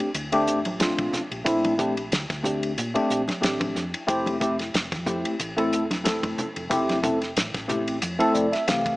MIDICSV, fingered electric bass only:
0, 0, Header, 1, 2, 480
1, 0, Start_track
1, 0, Tempo, 655738
1, 1071, Time_signature, 4, 2, 24, 8
1, 6562, End_track
2, 0, Start_track
2, 0, Title_t, "Fingered electric bass"
2, 0, Program_c, 0, 33
2, 107, Note_on_c, 0, 38, 86
2, 347, Note_off_c, 0, 38, 0
2, 347, Note_on_c, 0, 33, 85
2, 699, Note_off_c, 0, 33, 0
2, 722, Note_on_c, 0, 34, 83
2, 824, Note_off_c, 0, 34, 0
2, 962, Note_on_c, 0, 34, 74
2, 1064, Note_off_c, 0, 34, 0
2, 1071, Note_on_c, 0, 34, 94
2, 1523, Note_off_c, 0, 34, 0
2, 1554, Note_on_c, 0, 38, 89
2, 1677, Note_off_c, 0, 38, 0
2, 1683, Note_on_c, 0, 38, 68
2, 2011, Note_off_c, 0, 38, 0
2, 2034, Note_on_c, 0, 46, 80
2, 2157, Note_off_c, 0, 46, 0
2, 2271, Note_on_c, 0, 34, 72
2, 2395, Note_off_c, 0, 34, 0
2, 2505, Note_on_c, 0, 33, 84
2, 2734, Note_off_c, 0, 33, 0
2, 2747, Note_on_c, 0, 41, 88
2, 2873, Note_off_c, 0, 41, 0
2, 2993, Note_on_c, 0, 29, 92
2, 3444, Note_off_c, 0, 29, 0
2, 3468, Note_on_c, 0, 29, 86
2, 3601, Note_on_c, 0, 41, 73
2, 3612, Note_off_c, 0, 29, 0
2, 3828, Note_off_c, 0, 41, 0
2, 3950, Note_on_c, 0, 33, 92
2, 4193, Note_off_c, 0, 33, 0
2, 4193, Note_on_c, 0, 28, 86
2, 4541, Note_off_c, 0, 28, 0
2, 4565, Note_on_c, 0, 29, 80
2, 4665, Note_off_c, 0, 29, 0
2, 4805, Note_on_c, 0, 29, 74
2, 4905, Note_off_c, 0, 29, 0
2, 4910, Note_on_c, 0, 29, 95
2, 5361, Note_off_c, 0, 29, 0
2, 5392, Note_on_c, 0, 33, 82
2, 5515, Note_off_c, 0, 33, 0
2, 5523, Note_on_c, 0, 33, 75
2, 5849, Note_off_c, 0, 33, 0
2, 5876, Note_on_c, 0, 41, 87
2, 5997, Note_off_c, 0, 41, 0
2, 6111, Note_on_c, 0, 29, 81
2, 6234, Note_off_c, 0, 29, 0
2, 6355, Note_on_c, 0, 36, 80
2, 6562, Note_off_c, 0, 36, 0
2, 6562, End_track
0, 0, End_of_file